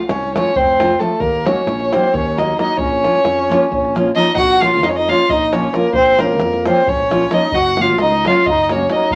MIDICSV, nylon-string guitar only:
0, 0, Header, 1, 2, 480
1, 0, Start_track
1, 0, Key_signature, -5, "minor"
1, 0, Tempo, 450789
1, 1293, Time_signature, 7, 3, 24, 8
1, 9744, End_track
2, 0, Start_track
2, 0, Title_t, "Nylon-string guitar"
2, 0, Program_c, 0, 24
2, 379, Note_on_c, 0, 53, 68
2, 385, Note_on_c, 0, 57, 64
2, 389, Note_on_c, 0, 60, 71
2, 399, Note_on_c, 0, 65, 78
2, 527, Note_off_c, 0, 53, 0
2, 528, Note_off_c, 0, 57, 0
2, 531, Note_off_c, 0, 60, 0
2, 536, Note_off_c, 0, 65, 0
2, 853, Note_on_c, 0, 53, 62
2, 858, Note_on_c, 0, 57, 55
2, 869, Note_on_c, 0, 60, 58
2, 875, Note_on_c, 0, 65, 82
2, 996, Note_off_c, 0, 53, 0
2, 998, Note_off_c, 0, 57, 0
2, 1004, Note_off_c, 0, 60, 0
2, 1006, Note_off_c, 0, 65, 0
2, 1063, Note_on_c, 0, 53, 59
2, 1067, Note_on_c, 0, 57, 51
2, 1077, Note_on_c, 0, 60, 51
2, 1081, Note_on_c, 0, 65, 65
2, 1209, Note_off_c, 0, 53, 0
2, 1210, Note_off_c, 0, 57, 0
2, 1216, Note_off_c, 0, 60, 0
2, 1217, Note_off_c, 0, 65, 0
2, 1543, Note_on_c, 0, 54, 65
2, 1550, Note_on_c, 0, 58, 66
2, 1557, Note_on_c, 0, 63, 63
2, 1567, Note_on_c, 0, 66, 76
2, 1699, Note_off_c, 0, 54, 0
2, 1700, Note_off_c, 0, 58, 0
2, 1705, Note_off_c, 0, 63, 0
2, 1710, Note_off_c, 0, 66, 0
2, 2053, Note_on_c, 0, 54, 69
2, 2063, Note_on_c, 0, 58, 69
2, 2069, Note_on_c, 0, 63, 75
2, 2077, Note_on_c, 0, 66, 85
2, 2202, Note_off_c, 0, 54, 0
2, 2207, Note_off_c, 0, 58, 0
2, 2210, Note_off_c, 0, 63, 0
2, 2212, Note_off_c, 0, 66, 0
2, 2526, Note_on_c, 0, 54, 59
2, 2530, Note_on_c, 0, 58, 66
2, 2535, Note_on_c, 0, 63, 58
2, 2548, Note_on_c, 0, 66, 63
2, 2671, Note_off_c, 0, 54, 0
2, 2673, Note_off_c, 0, 58, 0
2, 2673, Note_off_c, 0, 63, 0
2, 2681, Note_off_c, 0, 66, 0
2, 2742, Note_on_c, 0, 54, 60
2, 2752, Note_on_c, 0, 58, 42
2, 2756, Note_on_c, 0, 63, 46
2, 2766, Note_on_c, 0, 66, 64
2, 2887, Note_off_c, 0, 54, 0
2, 2892, Note_off_c, 0, 58, 0
2, 2894, Note_off_c, 0, 63, 0
2, 2899, Note_off_c, 0, 66, 0
2, 3230, Note_on_c, 0, 53, 59
2, 3235, Note_on_c, 0, 58, 60
2, 3243, Note_on_c, 0, 61, 62
2, 3246, Note_on_c, 0, 65, 72
2, 3381, Note_off_c, 0, 53, 0
2, 3383, Note_off_c, 0, 58, 0
2, 3387, Note_off_c, 0, 61, 0
2, 3388, Note_off_c, 0, 65, 0
2, 3717, Note_on_c, 0, 53, 78
2, 3718, Note_on_c, 0, 58, 81
2, 3727, Note_on_c, 0, 61, 76
2, 3737, Note_on_c, 0, 65, 98
2, 3873, Note_off_c, 0, 53, 0
2, 3873, Note_off_c, 0, 58, 0
2, 3878, Note_off_c, 0, 61, 0
2, 3883, Note_off_c, 0, 65, 0
2, 4204, Note_on_c, 0, 53, 72
2, 4212, Note_on_c, 0, 58, 74
2, 4217, Note_on_c, 0, 61, 74
2, 4225, Note_on_c, 0, 65, 79
2, 4349, Note_off_c, 0, 53, 0
2, 4354, Note_off_c, 0, 58, 0
2, 4356, Note_off_c, 0, 61, 0
2, 4360, Note_off_c, 0, 65, 0
2, 4426, Note_on_c, 0, 53, 67
2, 4431, Note_on_c, 0, 58, 57
2, 4432, Note_on_c, 0, 61, 53
2, 4440, Note_on_c, 0, 65, 77
2, 4569, Note_off_c, 0, 53, 0
2, 4570, Note_off_c, 0, 58, 0
2, 4572, Note_off_c, 0, 61, 0
2, 4576, Note_off_c, 0, 65, 0
2, 4901, Note_on_c, 0, 53, 62
2, 4906, Note_on_c, 0, 58, 51
2, 4919, Note_on_c, 0, 61, 57
2, 4927, Note_on_c, 0, 65, 69
2, 5057, Note_off_c, 0, 53, 0
2, 5059, Note_off_c, 0, 58, 0
2, 5067, Note_off_c, 0, 61, 0
2, 5069, Note_off_c, 0, 65, 0
2, 5400, Note_on_c, 0, 53, 75
2, 5407, Note_on_c, 0, 58, 64
2, 5412, Note_on_c, 0, 61, 68
2, 5422, Note_on_c, 0, 65, 78
2, 5555, Note_off_c, 0, 53, 0
2, 5558, Note_off_c, 0, 58, 0
2, 5561, Note_off_c, 0, 61, 0
2, 5566, Note_off_c, 0, 65, 0
2, 5887, Note_on_c, 0, 53, 63
2, 5895, Note_on_c, 0, 58, 62
2, 5897, Note_on_c, 0, 61, 60
2, 5912, Note_on_c, 0, 65, 70
2, 6032, Note_off_c, 0, 53, 0
2, 6036, Note_off_c, 0, 61, 0
2, 6037, Note_off_c, 0, 58, 0
2, 6045, Note_off_c, 0, 65, 0
2, 6100, Note_on_c, 0, 53, 54
2, 6106, Note_on_c, 0, 58, 59
2, 6114, Note_on_c, 0, 61, 49
2, 6122, Note_on_c, 0, 65, 64
2, 6247, Note_off_c, 0, 53, 0
2, 6250, Note_off_c, 0, 58, 0
2, 6254, Note_off_c, 0, 61, 0
2, 6258, Note_off_c, 0, 65, 0
2, 6581, Note_on_c, 0, 53, 62
2, 6592, Note_on_c, 0, 58, 59
2, 6595, Note_on_c, 0, 61, 57
2, 6608, Note_on_c, 0, 65, 70
2, 6738, Note_off_c, 0, 53, 0
2, 6744, Note_off_c, 0, 58, 0
2, 6744, Note_off_c, 0, 61, 0
2, 6752, Note_off_c, 0, 65, 0
2, 7092, Note_on_c, 0, 53, 81
2, 7101, Note_on_c, 0, 58, 68
2, 7104, Note_on_c, 0, 61, 73
2, 7110, Note_on_c, 0, 65, 77
2, 7243, Note_off_c, 0, 53, 0
2, 7248, Note_off_c, 0, 58, 0
2, 7248, Note_off_c, 0, 61, 0
2, 7252, Note_off_c, 0, 65, 0
2, 7565, Note_on_c, 0, 53, 71
2, 7567, Note_on_c, 0, 58, 66
2, 7576, Note_on_c, 0, 61, 59
2, 7584, Note_on_c, 0, 65, 80
2, 7713, Note_off_c, 0, 53, 0
2, 7713, Note_off_c, 0, 58, 0
2, 7718, Note_off_c, 0, 61, 0
2, 7722, Note_off_c, 0, 65, 0
2, 7786, Note_on_c, 0, 53, 67
2, 7789, Note_on_c, 0, 58, 52
2, 7795, Note_on_c, 0, 61, 52
2, 7803, Note_on_c, 0, 65, 70
2, 7933, Note_off_c, 0, 53, 0
2, 7933, Note_off_c, 0, 58, 0
2, 7936, Note_off_c, 0, 61, 0
2, 7941, Note_off_c, 0, 65, 0
2, 8288, Note_on_c, 0, 54, 63
2, 8289, Note_on_c, 0, 58, 68
2, 8294, Note_on_c, 0, 61, 70
2, 8308, Note_on_c, 0, 66, 80
2, 8433, Note_off_c, 0, 58, 0
2, 8434, Note_off_c, 0, 54, 0
2, 8435, Note_off_c, 0, 61, 0
2, 8444, Note_off_c, 0, 66, 0
2, 8778, Note_on_c, 0, 54, 83
2, 8783, Note_on_c, 0, 58, 70
2, 8789, Note_on_c, 0, 61, 70
2, 8800, Note_on_c, 0, 66, 86
2, 8928, Note_off_c, 0, 54, 0
2, 8930, Note_off_c, 0, 58, 0
2, 8933, Note_off_c, 0, 61, 0
2, 8939, Note_off_c, 0, 66, 0
2, 9270, Note_on_c, 0, 54, 76
2, 9278, Note_on_c, 0, 58, 68
2, 9285, Note_on_c, 0, 61, 61
2, 9292, Note_on_c, 0, 66, 71
2, 9407, Note_off_c, 0, 54, 0
2, 9411, Note_off_c, 0, 58, 0
2, 9415, Note_off_c, 0, 61, 0
2, 9418, Note_off_c, 0, 66, 0
2, 9481, Note_on_c, 0, 54, 57
2, 9491, Note_on_c, 0, 58, 58
2, 9498, Note_on_c, 0, 61, 52
2, 9507, Note_on_c, 0, 66, 66
2, 9622, Note_off_c, 0, 54, 0
2, 9628, Note_off_c, 0, 58, 0
2, 9630, Note_off_c, 0, 61, 0
2, 9635, Note_off_c, 0, 66, 0
2, 9744, End_track
0, 0, End_of_file